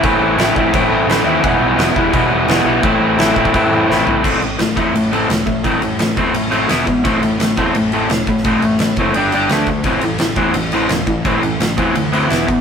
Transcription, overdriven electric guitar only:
\new Staff \with { instrumentName = "Overdriven electric guitar" } { \time 4/4 \key a \minor \tempo 4 = 171 <a, e a c' e'>4 <e a c' e'>8 <a c' e'>8 <a, e a c' e'>4 <e a c' e'>8 <a c' e'>8 | <e, b, e g b e'>4 <e g b e'>8 <e g b e'>8 <e, b, e g b e'>4 <e g b e'>8 <e g b e'>8 | <a, e a c' e'>4 <e a c' e'>8 <a c' e'>8 <a, e a c' e'>4 <e a c' e'>8 <a c' e'>8 | <a, a c'>8 <a, a>8 <a, a>8 <a, a c'>8 <a, a>8 <a, a c'>8 <a, a>8 <a, a>8 |
<a, a c'>8 <a, a>8 <a, a>8 <a, a c'>8 <a, a>8 <a, a c'>8 <e b e'>8 <e b>8 | <a, a c'>8 <a, a>8 <a, a>8 <a, a c'>8 <a, a>8 <a, a c'>8 <a, a>8 <a, a>8 | <a, a c'>8 <a, a>8 <a, a>8 <a, a c'>8 <g d' g'>8 <g d' g'>8 <d a d'>8 <d a>8 | <a, e c'>8 <a, e>8 <a, e>8 <a, e c'>8 <a, e>8 <a, e c'>8 <a, e>8 <a, e>8 |
<a, e c'>8 <a, e>8 <a, e>8 <a, e c'>8 <a, e>8 <a, e c'>8 <e b e'>8 <e b>8 | }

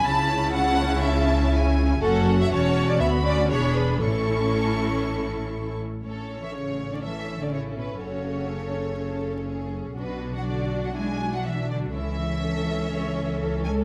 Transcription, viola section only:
\new Staff \with { instrumentName = "Viola section" } { \time 4/4 \key a \major \tempo 4 = 122 << { e'1 | fis'4 fis'4 fis'4 gis'4 | e'2.~ e'8 r8 | a'1~ |
a'1 | fis'1 | a'1 | } \\ { cis'1 | cis'4 cis'4 b8 cis'8 d'4 | cis'2.~ cis'8 r8 | cis'1~ |
cis'1 | d'1 | cis'1 | } >> }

